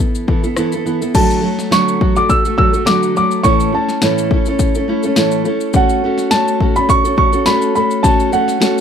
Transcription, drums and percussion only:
0.15 shaker medium
0.28 kick medium
0.44 shaker soft
0.56 cross-stick loud
0.56 shaker medium
0.72 shaker medium
0.87 shaker soft
1.02 shaker medium
1.15 kick loud
1.15 crash medium
1.15 shaker medium
1.30 shaker soft
1.59 snare soft
1.59 shaker medium
1.72 snare loud
1.72 shaker medium
1.88 shaker medium
2.01 kick medium
2.16 shaker soft
2.30 kick medium
2.30 shaker medium
2.45 shaker medium
2.58 kick loud
2.74 shaker soft
2.87 snare loud
2.87 shaker medium
3.03 shaker medium
3.17 shaker soft
3.31 shaker medium
3.44 kick loud
3.44 shaker medium
3.60 shaker soft
3.89 snare soft
3.89 shaker medium
4.02 snare loud
4.02 shaker medium
4.18 shaker medium
4.31 kick medium
4.46 shaker soft
4.59 kick medium
4.59 shaker medium
4.75 shaker medium
5.03 shaker soft
5.16 snare loud
5.16 shaker medium
5.31 shaker medium
5.45 shaker soft
5.61 shaker medium
5.73 kick loud
5.73 shaker medium
5.89 shaker soft
6.18 snare soft
6.18 shaker medium
6.31 snare loud
6.31 shaker medium
6.48 shaker medium
6.60 kick medium
6.76 shaker soft
6.89 kick medium
6.89 shaker medium
7.05 shaker medium
7.18 kick loud
7.33 shaker soft
7.46 snare loud
7.46 shaker medium
7.62 shaker medium
7.76 shaker soft
7.91 shaker medium
8.04 kick loud
8.04 shaker medium
8.20 shaker soft
8.33 shaker medium
8.48 snare soft
8.48 shaker medium
8.62 snare loud
8.62 shaker medium

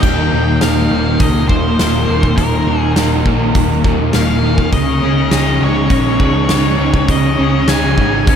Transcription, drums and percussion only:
0.03 kick loud
0.03 crash medium
0.61 snare loud
0.61 open hi-hat soft
1.20 kick loud
1.20 open hi-hat soft
1.49 kick medium
1.79 snare loud
1.79 open hi-hat soft
2.23 kick medium
2.38 kick medium
2.38 open hi-hat medium
2.96 snare loud
2.96 open hi-hat soft
3.26 kick medium
3.55 kick loud
3.55 open hi-hat soft
3.84 kick medium
4.13 snare medium
4.13 open hi-hat soft
4.58 kick medium
4.72 kick medium
4.72 open hi-hat soft
5.31 snare medium
5.31 open hi-hat soft
5.90 kick loud
5.90 open hi-hat soft
6.20 kick medium
6.49 snare loud
6.49 open hi-hat soft
6.94 kick medium
7.08 kick medium
7.08 open hi-hat soft
7.68 snare loud
7.68 open hi-hat soft
7.98 kick medium
8.27 kick loud
8.27 open hi-hat soft

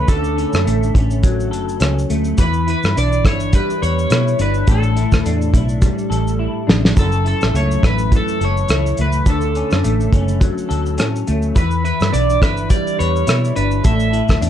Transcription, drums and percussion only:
0.08 kick loud
0.08 closed hi-hat medium
0.08 shaker medium
0.24 shaker soft
0.38 closed hi-hat soft
0.38 shaker soft
0.53 cross-stick medium
0.53 shaker soft
0.67 closed hi-hat medium
0.67 shaker medium
0.83 shaker medium
0.95 kick medium
0.95 closed hi-hat soft
0.95 shaker soft
1.11 shaker medium
1.23 kick loud
1.23 closed hi-hat medium
1.23 shaker medium
1.40 shaker medium
1.53 closed hi-hat soft
1.53 shaker medium
1.69 shaker medium
1.80 cross-stick loud
1.80 closed hi-hat medium
1.80 shaker medium
1.99 shaker soft
2.10 closed hi-hat soft
2.10 shaker medium
2.24 shaker soft
2.38 kick loud
2.38 closed hi-hat medium
2.38 shaker medium
2.53 shaker soft
2.68 closed hi-hat soft
2.68 shaker soft
2.83 cross-stick medium
2.83 shaker soft
2.97 closed hi-hat medium
2.97 shaker medium
3.12 shaker medium
3.25 kick medium
3.25 cross-stick medium
3.25 closed hi-hat soft
3.25 shaker medium
3.40 shaker medium
3.53 kick medium
3.53 closed hi-hat medium
3.53 shaker medium
3.70 shaker medium
3.83 closed hi-hat medium
3.83 shaker medium
3.99 shaker medium
4.10 cross-stick loud
4.10 closed hi-hat medium
4.10 shaker medium
4.28 shaker soft
4.39 closed hi-hat medium
4.39 shaker medium
4.54 shaker soft
4.67 kick loud
4.67 closed hi-hat medium
4.67 shaker medium
4.83 shaker medium
4.97 closed hi-hat soft
4.97 shaker soft
5.12 kick medium
5.12 cross-stick medium
5.12 shaker soft
5.26 closed hi-hat medium
5.26 shaker medium
5.42 shaker medium
5.54 kick medium
5.54 closed hi-hat medium
5.54 shaker medium
5.69 shaker medium
5.82 kick loud
5.82 closed hi-hat medium
5.82 shaker medium
5.99 shaker medium
6.12 closed hi-hat medium
6.12 shaker medium
6.27 shaker medium
6.69 snare medium
6.85 snare medium
6.97 kick loud
6.97 closed hi-hat medium
6.97 shaker medium
7.12 shaker medium
7.26 closed hi-hat soft
7.26 shaker soft
7.41 cross-stick medium
7.41 shaker soft
7.55 closed hi-hat medium
7.55 shaker medium
7.71 shaker soft
7.83 kick loud
7.83 cross-stick medium
7.83 closed hi-hat medium
7.83 shaker soft
7.98 shaker medium
8.12 kick loud
8.12 closed hi-hat medium
8.12 shaker medium
8.28 shaker soft
8.41 closed hi-hat soft
8.41 shaker soft
8.57 shaker soft
8.68 cross-stick loud
8.68 closed hi-hat medium
8.68 shaker medium
8.86 shaker medium
8.97 closed hi-hat medium
8.97 shaker medium
9.12 shaker medium
9.26 kick loud
9.26 closed hi-hat medium
9.26 shaker medium
9.41 shaker soft
9.55 closed hi-hat soft
9.55 shaker soft
9.71 cross-stick medium
9.71 shaker soft
9.84 closed hi-hat medium
9.84 shaker medium
10.00 shaker soft
10.13 kick medium
10.13 closed hi-hat medium
10.13 shaker medium
10.28 shaker medium
10.41 kick loud
10.41 closed hi-hat medium
10.41 shaker medium
10.58 shaker soft
10.71 closed hi-hat medium
10.71 shaker medium
10.86 shaker soft
10.98 cross-stick loud
10.98 closed hi-hat medium
10.98 shaker medium
11.16 shaker soft
11.27 closed hi-hat medium
11.27 shaker medium
11.42 shaker soft
11.56 kick loud
11.56 closed hi-hat medium
11.56 shaker medium
11.71 shaker soft
11.85 closed hi-hat soft
11.85 shaker soft
12.00 cross-stick medium
12.00 shaker soft
12.14 closed hi-hat medium
12.14 shaker medium
12.30 shaker medium
12.42 kick medium
12.42 cross-stick medium
12.42 closed hi-hat medium
12.42 shaker medium
12.57 shaker medium
12.70 kick loud
12.70 closed hi-hat medium
12.70 shaker medium
12.87 shaker medium
13.00 closed hi-hat medium
13.00 shaker medium
13.16 shaker soft
13.27 cross-stick loud
13.27 closed hi-hat medium
13.27 shaker medium
13.45 shaker soft
13.56 closed hi-hat medium
13.56 shaker medium
13.71 shaker soft
13.84 kick loud
13.84 closed hi-hat medium
13.84 shaker medium
14.00 shaker soft
14.13 closed hi-hat soft
14.13 shaker soft
14.28 kick medium
14.28 cross-stick medium
14.28 shaker soft
14.42 closed hi-hat medium
14.42 shaker medium

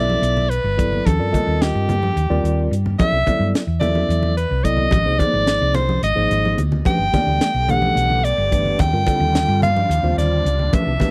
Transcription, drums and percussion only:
0.10 high conga medium
0.23 closed hi-hat medium
0.37 low conga medium
0.51 closed hi-hat medium
0.65 low conga soft
0.79 kick medium
0.79 closed hi-hat medium
0.93 low conga medium
1.07 kick loud
1.07 closed hi-hat medium
1.07 high conga medium
1.07 low conga soft
1.34 kick medium
1.34 closed hi-hat medium
1.34 low conga medium
1.62 snare loud
1.62 closed hi-hat medium
1.62 low conga soft
1.89 closed hi-hat medium
1.89 low conga medium
2.03 high conga medium
2.17 closed hi-hat medium
2.31 low conga medium
2.45 closed hi-hat medium
2.59 low conga soft
2.73 closed hi-hat medium
2.73 low conga soft
2.86 low conga medium
2.99 kick loud
2.99 closed hi-hat medium
2.99 high conga medium
2.99 low conga soft
3.27 kick medium
3.27 closed hi-hat medium
3.27 low conga medium
3.54 snare loud
3.54 closed hi-hat medium
3.54 low conga soft
3.81 closed hi-hat medium
3.81 low conga medium
3.95 high conga medium
4.10 closed hi-hat medium
4.23 low conga medium
4.37 closed hi-hat medium
4.50 low conga soft
4.63 kick medium
4.63 closed hi-hat medium
4.63 low conga soft
4.77 low conga medium
4.91 kick loud
4.91 closed hi-hat medium
4.91 high conga medium
4.91 low conga soft
5.19 kick medium
5.19 closed hi-hat medium
5.19 low conga loud
5.33 low conga soft
5.47 snare loud
5.47 closed hi-hat medium
5.61 low conga soft
5.75 closed hi-hat medium
5.75 low conga medium
5.89 high conga medium
6.03 closed hi-hat medium
6.17 high conga soft
6.31 closed hi-hat medium
6.31 high conga medium
6.45 high conga medium
6.58 closed hi-hat medium
6.58 low conga medium
6.72 low conga medium
6.85 kick loud
6.85 closed hi-hat medium
6.85 high conga medium
6.85 low conga soft
7.14 kick medium
7.14 snare soft
7.14 closed hi-hat medium
7.14 low conga medium
7.41 snare loud
7.41 closed hi-hat medium
7.41 low conga soft
7.68 closed hi-hat medium
7.68 low conga medium
7.82 high conga medium
7.97 closed hi-hat medium
8.10 low conga medium
8.25 closed hi-hat medium
8.38 low conga soft
8.52 kick medium
8.52 closed hi-hat medium
8.65 low conga medium
8.79 kick loud
8.79 closed hi-hat medium
8.79 high conga medium
8.79 low conga soft
9.07 kick medium
9.07 closed hi-hat medium
9.07 low conga medium
9.35 snare loud
9.35 closed hi-hat medium
9.35 low conga soft
9.62 closed hi-hat medium
9.62 low conga medium
9.77 high conga medium
9.91 closed hi-hat medium
10.04 low conga medium
10.19 snare soft
10.19 closed hi-hat medium
10.32 low conga soft
10.45 closed hi-hat medium
10.45 low conga soft
10.59 low conga medium
10.73 kick loud
10.73 closed hi-hat medium
10.73 high conga medium
10.73 low conga soft
11.00 kick medium
11.00 snare soft
11.00 closed hi-hat medium
11.00 low conga medium

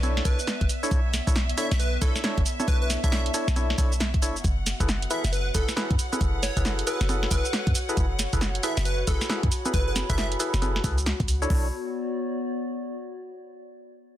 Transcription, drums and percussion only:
0.03 closed hi-hat medium
0.03 high conga medium
0.03 shaker soft
0.17 snare medium
0.25 kick loud
0.25 open hi-hat loud
0.25 shaker medium
0.39 shaker soft
0.47 snare loud
0.47 open hi-hat medium
0.47 shaker soft
0.61 kick loud
0.61 closed hi-hat medium
0.69 open hi-hat loud
0.69 shaker medium
0.83 shaker soft
0.91 kick loud
0.91 closed hi-hat medium
0.91 shaker soft
1.14 snare medium
1.14 open hi-hat loud
1.14 shaker medium
1.27 kick medium
1.27 closed hi-hat medium
1.27 shaker soft
1.36 snare loud
1.36 shaker soft
1.49 closed hi-hat medium
1.58 open hi-hat loud
1.58 shaker medium
1.72 snare medium
1.72 closed hi-hat medium
1.72 shaker soft
1.80 closed hi-hat medium
1.80 shaker soft
2.02 kick loud
2.02 open hi-hat loud
2.02 shaker medium
2.16 snare medium
2.16 shaker soft
2.24 snare loud
2.24 shaker soft
2.38 kick loud
2.38 closed hi-hat medium
2.46 open hi-hat loud
2.46 shaker medium
2.60 high conga medium
2.60 shaker soft
2.68 kick loud
2.68 closed hi-hat medium
2.68 shaker soft
2.90 snare medium
2.90 open hi-hat loud
2.90 shaker medium
3.04 kick medium
3.04 closed hi-hat medium
3.04 shaker soft
3.12 snare loud
3.12 shaker soft
3.26 closed hi-hat medium
3.34 open hi-hat loud
3.34 shaker medium
3.48 snare medium
3.48 closed hi-hat medium
3.48 shaker soft
3.56 closed hi-hat medium
3.56 high conga medium
3.56 shaker soft
3.70 snare medium
3.78 kick loud
3.78 open hi-hat loud
3.78 shaker medium
3.92 shaker soft
4.00 snare loud
4.00 open hi-hat medium
4.00 shaker soft
4.14 kick loud
4.14 closed hi-hat medium
4.22 open hi-hat loud
4.22 shaker medium
4.36 shaker soft
4.44 kick loud
4.44 closed hi-hat medium
4.44 shaker soft
4.67 snare medium
4.67 open hi-hat loud
4.67 shaker medium
4.80 kick medium
4.80 closed hi-hat medium
4.80 shaker soft
4.89 snare loud
4.89 shaker soft
5.02 closed hi-hat medium
5.11 open hi-hat loud
5.11 shaker medium
5.25 snare soft
5.25 closed hi-hat medium
5.25 shaker soft
5.33 closed hi-hat medium
5.33 shaker soft
5.55 kick loud
5.55 open hi-hat loud
5.55 shaker medium
5.69 snare medium
5.69 shaker soft
5.77 snare loud
5.77 shaker soft
5.91 kick loud
5.91 closed hi-hat medium
5.99 open hi-hat loud
5.99 shaker medium
6.13 high conga medium
6.13 shaker soft
6.21 kick loud
6.21 closed hi-hat medium
6.21 shaker soft
6.43 snare medium
6.43 open hi-hat loud
6.43 shaker medium
6.57 kick medium
6.57 closed hi-hat medium
6.57 shaker soft
6.65 snare loud
6.65 shaker soft
6.79 closed hi-hat medium
6.87 open hi-hat loud
6.87 shaker medium
7.01 snare medium
7.01 closed hi-hat medium
7.01 shaker soft
7.09 closed hi-hat medium
7.09 high conga medium
7.09 shaker soft
7.23 snare medium
7.31 kick loud
7.31 open hi-hat loud
7.31 shaker medium
7.45 shaker soft
7.53 snare loud
7.53 open hi-hat medium
7.53 shaker soft
7.67 kick loud
7.67 closed hi-hat medium
7.75 open hi-hat loud
7.75 shaker medium
7.89 shaker soft
7.97 kick loud
7.97 closed hi-hat medium
7.97 shaker soft
8.19 snare medium
8.19 open hi-hat loud
8.19 shaker medium
8.33 kick medium
8.33 closed hi-hat medium
8.33 shaker soft
8.41 snare loud
8.41 shaker soft
8.55 closed hi-hat medium
8.63 open hi-hat loud
8.63 shaker medium
8.77 snare medium
8.77 closed hi-hat medium
8.77 shaker soft
8.85 closed hi-hat medium
8.85 shaker soft
9.07 kick loud
9.07 open hi-hat loud
9.07 shaker medium
9.21 snare medium
9.21 shaker soft
9.30 snare loud
9.30 shaker soft
9.43 kick loud
9.43 closed hi-hat medium
9.52 open hi-hat loud
9.52 shaker medium
9.66 high conga medium
9.66 shaker soft
9.74 kick loud
9.74 closed hi-hat medium
9.74 shaker soft
9.96 snare medium
9.96 open hi-hat loud
9.96 high conga medium
9.96 shaker medium
10.10 kick medium
10.10 closed hi-hat medium
10.10 shaker soft
10.18 snare loud
10.18 shaker soft
10.32 closed hi-hat medium
10.40 open hi-hat loud
10.40 shaker medium
10.54 snare medium
10.54 closed hi-hat medium
10.54 shaker soft
10.62 closed hi-hat medium
10.62 high conga medium
10.62 shaker soft
10.76 snare medium
10.84 kick loud
10.84 open hi-hat loud
10.84 shaker medium
10.98 closed hi-hat soft
10.98 shaker soft
11.06 snare loud
11.06 open hi-hat medium
11.06 shaker soft
11.20 kick loud
11.20 closed hi-hat medium
11.28 open hi-hat loud
11.28 shaker medium
11.42 shaker soft
11.50 kick loud
11.50 open hi-hat medium

